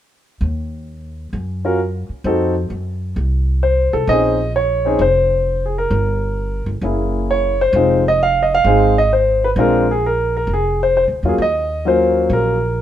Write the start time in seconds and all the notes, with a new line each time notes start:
0.41 D#2
1.33 F#2
1.65 C#4 F4 F#4 A#4
2.09 muted upright bass stroke
2.24 F2 C4 D#4 F#4 A4
2.70 F#2
3.16 C2
3.63 C5
3.93 C2 A4
4.07 A#1 C4 C#4 D#4 G#4 D#5
4.56 C#5
4.85 C4 C#4 D#4 G#4
4.99 F1 C5
5.66 G#4
5.78 A#4
5.91 G1
6.66 G1
6.81 F#1 A#3 C#4 E4 G#4
7.31 C#5
7.61 C5
7.73 F1 G#3 C4 D#4 F4
8.08 D#5
8.23 F5
8.43 D#5
8.55 F5
8.64 G#1 G#3 C4 D#4 G#4
8.98 D#5
9.13 C5
9.44 B4
9.56 A#1 G#3 C4 D4 F4
9.60 A#4
9.91 G#4
10.06 A#4
10.37 A#4
10.47 F1
10.53 G#4
10.83 C5
10.97 C5
11.08 D2
11.23 E2 F#3 A#3 C#4 F4
11.29 G#4
11.38 D#2 D#5
11.85 F#3 A#3 C#4 F4 C5
12.29 A#1 A#4